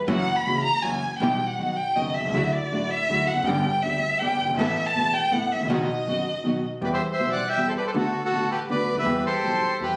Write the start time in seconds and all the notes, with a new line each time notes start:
0.07 F#1 F#2 E3 F#3 A#3 C#4 E4 F#4 F#5
0.36 B5
0.45 C#2 C#3 E3 A#3 C#4 E4 F#4
0.64 A#5
0.83 F#1 F#2 E3 F#3 A#3 C#4 E4 F#4 G#5
1.19 B1 B2 E3 G3 B3 E4 G4 G5
1.47 F#5
1.58 B1 B2 D#3 F#3 B3 D#4 F#4
1.76 G5
1.96 F#1 F#2 D#3 F#3 B3 D#4 F#4 D#5
2.14 E5
2.20 B1
2.25 C2
2.29 C#2
2.34 D2 D3 F#3 A3 D4 E4 F#4
2.52 D5
2.72 A1 A2 D3 F#3 A3 D4 E4 F#4
2.90 E5
3.09 D2 D3 F#3 A3 D4 E4 F#4
3.27 F#5
3.33 E1 E2
3.38 F1 F2
3.43 F#1 F#2 G5
3.47 G1 G2 D3 G3 B3 D4 G4
3.82 D2 D3 G3 B3 D4 G4 E5
4.19 G1 G2 D3 G3 B3 D4 G4 G5
4.45 F#1
4.49 G1
4.54 G#1
4.58 A1 A2 E3 A3 B3 E4 A4 E5
4.86 A5
4.95 E1 E2 E3 A3 B3 E4 A4
5.13 G5
5.31 A1 A2 E3 A3 B3 E4 A4 F#5
5.52 G#1 E5
5.60 A1
5.65 A#1 D#5
5.70 B1 B2 D#3 F#3 B3 D#4 F#4
6.07 F#1 F#2 D#3 F#3 B3 D#4 F#4
6.44 B1 B2 D#3 F#3 B3 D#4 F#4
6.81 E2 E3 G3 B3 G4 B4
6.86 D5
6.93 C5 E5
7.12 C5 E5
7.19 B1 B2 E3 G3 B3 G4
7.32 D5 F#5
7.48 E5 G5
7.57 E2 E3 G3 B3 G4
7.68 A4 C5
7.77 B4 D5
7.87 A4 C5
7.94 D2 D3 A3 B3 F#4 A4
8.24 F#4 A4
8.32 A1 A2 D3 A3 B3 F#4
8.51 G4 B4
8.69 D2 D3 A3 B3 F#4 B4 D5
8.92 C#2 D2
8.97 D2 B4 E5
9.01 D#2
9.05 E2 E3 G3 B3 G4
9.26 G4 A4 C5
9.43 B1 B2 E3 G3 B3 G4
9.80 E2 E3 G3 B3 G4 B4